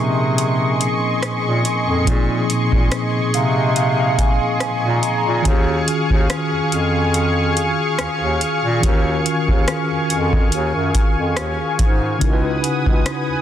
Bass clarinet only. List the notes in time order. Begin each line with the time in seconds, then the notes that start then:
Already playing: C3
1.23 A#2
1.46 A#2
1.88 F2
2.07 A#2
2.72 A#2
3.15 C3
3.34 C3
4.61 A#2
4.84 A#2
5.26 A#2
5.45 D#2
6.10 D#2
6.53 F2
6.72 F2
7.99 D#2
8.22 D#2
8.64 A#2
8.83 D#2
9.49 D#2
9.91 F2
10.10 F2
10.53 D#2
10.75 F#2
11.17 F2
11.37 D#2
11.79 G#2
12.21 C#2
12.87 C#2
13.29 D#2